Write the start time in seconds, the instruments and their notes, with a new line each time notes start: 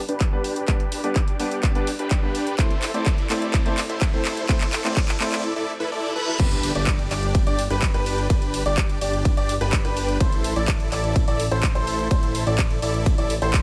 Already playing: riser
0.09 analog synth bass G1, supersaw synth D4 G4 B4, closed hi-hat
0.20 kick, clap, closed hi-hat
0.32 analog synth bass G1, grand piano G3 B3 D4 B4, supersaw synth D4 G4 B4
0.44 open hi-hat
0.56 closed hi-hat
0.67 analog synth bass G1, grand piano G3 B3 D4 B4, kick, clap, closed hi-hat
0.80 closed hi-hat
0.92 open hi-hat
1.03 analog synth bass G1, grand piano G3 B3 D4 B4, supersaw synth D4 G4 D5, closed hi-hat
1.16 kick, clap, closed hi-hat
1.28 closed hi-hat
1.39 analog synth bass G1, grand piano G3 B3 D4 B4, supersaw synth D4 G4 D5, open hi-hat
1.51 closed hi-hat
1.63 kick, clap, closed hi-hat
1.75 analog synth bass G1, grand piano G3 B3 D4 B4, supersaw synth D4 G4 D5, closed hi-hat
1.87 open hi-hat
1.99 analog synth bass G1, supersaw synth D4 G4 B4, closed hi-hat
2.11 kick, clap, closed hi-hat
2.22 analog synth bass G2, grand piano G3 B3 D4 B4, supersaw synth D4 G4 B4
2.35 open hi-hat
2.47 closed hi-hat
2.58 analog synth bass A1, grand piano A3 C4 E4 C5, supersaw synth E4 C5, kick, clap, closed hi-hat
2.70 closed hi-hat
2.82 clap, open hi-hat
2.94 analog synth bass A1, grand piano A3 C4 E4 C5, supersaw synth E4 A4 D5, closed hi-hat
3.06 kick, clap, closed hi-hat
3.18 closed hi-hat
3.29 analog synth bass A1, grand piano A3 C4 E4 C5, supersaw synth E4 A4 D5, clap, open hi-hat
3.42 closed hi-hat
3.54 kick, clap, closed hi-hat
3.65 analog synth bass A1, grand piano A3 C4 E4 C5, supersaw synth E4 A4 D5, closed hi-hat
3.78 clap, open hi-hat
3.90 analog synth bass A1, supersaw synth E4 A4 C5, closed hi-hat
4.01 kick, clap, closed hi-hat
4.13 analog synth bass A1, grand piano A3 C4 E4 C5, supersaw synth E4 A4 C5
4.25 clap, open hi-hat
4.37 closed hi-hat
4.48 analog synth bass A1, grand piano A3 C4 E4 C5, kick, clap, closed hi-hat
4.61 clap, closed hi-hat
4.73 clap, open hi-hat
4.84 analog synth bass A1, grand piano A3 C4 E4 C5, supersaw synth E4 A4 D5, clap, closed hi-hat
4.97 kick, clap, closed hi-hat
5.09 clap, closed hi-hat
5.20 analog synth bass A1, grand piano A3 C4 E4 C5, supersaw synth E4 A4 D5, clap, open hi-hat
5.32 clap, closed hi-hat
5.44 reverse cymbal
5.56 supersaw synth E4 A4 D5
5.80 supersaw synth E4 A4 B4
5.92 supersaw synth E4 A4 D5
6.16 supersaw synth E4 A4 B4, high tom
6.28 mid tom
6.39 analog synth bass G1, supersaw synth D4 G4, grand piano B4, kick, closed hi-hat, crash, ride, impact
6.51 closed hi-hat
6.63 open hi-hat
6.75 analog synth bass G1, supersaw synth D4 G4 D5, grand piano D5, closed hi-hat
6.87 kick, clap, closed hi-hat, ride
6.99 closed hi-hat
7.11 analog synth bass G1, supersaw synth D4 G4 D5, grand piano D5, clap, open hi-hat
7.23 closed hi-hat
7.35 kick, closed hi-hat, ride
7.47 analog synth bass G1, supersaw synth D4 G4 D5, grand piano D5, closed hi-hat
7.59 open hi-hat
7.70 analog synth bass G1, supersaw synth D4 G4 B4, grand piano B4, closed hi-hat
7.82 kick, clap, closed hi-hat, ride
7.94 analog synth bass G1, supersaw synth D4 G4 B4, grand piano B4, closed hi-hat
8.06 open hi-hat
8.18 closed hi-hat
8.30 analog synth bass G1, supersaw synth G4, grand piano B4, kick, closed hi-hat, ride
8.42 closed hi-hat
8.54 open hi-hat
8.66 analog synth bass G1, supersaw synth D4 G4 D5, grand piano D5, closed hi-hat
8.77 kick, clap, closed hi-hat, ride
8.90 closed hi-hat
9.01 analog synth bass G1, supersaw synth D4 G4 D5, grand piano D5, open hi-hat
9.13 closed hi-hat
9.25 kick, closed hi-hat, ride
9.37 analog synth bass G1, supersaw synth D4 G4 D5, grand piano D5, closed hi-hat
9.49 open hi-hat
9.61 analog synth bass G1, supersaw synth D4 G4 B4, grand piano B4, closed hi-hat
9.73 kick, clap, closed hi-hat, ride
9.85 analog synth bass G1, supersaw synth D4 G4 B4, grand piano B4, closed hi-hat
9.97 open hi-hat
10.09 closed hi-hat
10.20 analog synth bass A1, supersaw synth E4 A4, grand piano C5, kick, closed hi-hat, ride
10.32 closed hi-hat
10.44 open hi-hat
10.56 analog synth bass A1, supersaw synth E4 A4 D5, grand piano D5, closed hi-hat
10.68 kick, clap, closed hi-hat, ride
10.80 closed hi-hat
10.92 analog synth bass A1, supersaw synth E4 A4 D5, grand piano D5, clap, open hi-hat
11.04 closed hi-hat
11.16 kick, closed hi-hat, ride
11.28 analog synth bass A1, supersaw synth E4 A4 D5, grand piano D5, closed hi-hat
11.40 open hi-hat
11.51 analog synth bass A1, supersaw synth E4 A4 C5, grand piano C5, closed hi-hat
11.63 kick, clap, closed hi-hat, ride
11.75 analog synth bass A1, supersaw synth E4 A4 C5, grand piano C5, closed hi-hat
11.87 open hi-hat
11.99 closed hi-hat
12.11 analog synth bass A1, grand piano C5, kick, closed hi-hat, ride
12.23 closed hi-hat
12.35 open hi-hat
12.47 analog synth bass A1, supersaw synth E4 A4 D5, grand piano D5, closed hi-hat
12.58 kick, clap, closed hi-hat, ride
12.71 closed hi-hat
12.82 analog synth bass A1, supersaw synth E4 A4 D5, grand piano D5, open hi-hat
12.94 closed hi-hat
13.06 kick, closed hi-hat, ride
13.18 analog synth bass A1, supersaw synth E4 A4 D5, grand piano D5, closed hi-hat
13.30 open hi-hat
13.42 analog synth bass A1, supersaw synth E4 A4 C5, grand piano C5, closed hi-hat
13.54 kick, clap, closed hi-hat, ride